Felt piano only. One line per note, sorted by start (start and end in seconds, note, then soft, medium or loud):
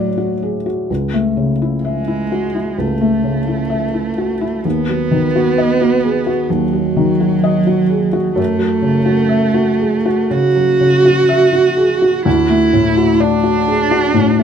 0.00 0.91 A2 soft
0.00 0.92 A3 soft
0.00 0.18 F#4 soft
0.00 0.43 G#4 soft
0.00 0.92 D5 soft
0.18 0.56 F#4 soft
0.43 0.66 G#4 soft
0.66 0.89 F#4 soft
0.90 2.74 C#2 soft
1.13 1.51 A3 soft
1.37 1.75 C#3 soft
1.62 1.99 E4 soft
1.85 2.22 E5 soft
2.08 2.45 E4 soft
2.32 2.55 F#4 soft
2.55 2.92 E4 soft
2.78 4.61 C#2 soft
3.01 3.38 A3 soft
3.24 3.61 C#3 soft
3.48 3.85 E4 soft
3.70 4.08 E5 soft
3.94 4.32 E4 soft
4.18 4.41 F#4 soft
4.41 4.65 E4 soft
4.65 6.47 D#2 soft
4.89 5.26 F#3 soft
5.11 5.49 D#3 soft
5.36 5.72 F#4 soft
5.58 5.95 D#5 soft
5.81 6.18 F#4 soft
6.04 6.27 G#4 soft
6.27 6.65 F#4 soft
6.50 8.34 D#2 soft
6.73 7.12 F#3 soft
6.97 7.35 D#3 soft
7.20 7.59 F#4 soft
7.44 7.82 D#5 soft
7.67 8.05 F#4 soft
7.90 8.14 G#4 soft
8.13 8.38 F#4 soft
8.36 10.26 F#2 soft
8.59 8.97 F#3 soft
8.82 9.21 C#3 soft
9.06 9.45 F#4 soft
9.29 9.70 E5 soft
9.54 9.96 F#4 soft
9.79 10.06 G#4 soft
10.06 10.46 F#4 soft
10.31 10.71 C#3 soft
10.56 10.95 F#3 soft
10.80 11.19 C#3 soft
11.05 11.44 F#4 soft
11.29 11.68 E5 soft
11.53 11.92 F#4 soft
11.77 12.01 G#4 soft
12.02 12.26 F#4 soft
12.25 14.12 D2 medium
12.49 12.87 A3 soft
12.73 13.11 A2 soft
12.97 13.35 F#4 soft
13.20 13.58 D5 soft
13.44 13.82 F#4 soft
13.68 13.92 G#4 soft
13.91 14.30 F#4 soft
14.14 14.43 A2 soft
14.39 14.43 A3 soft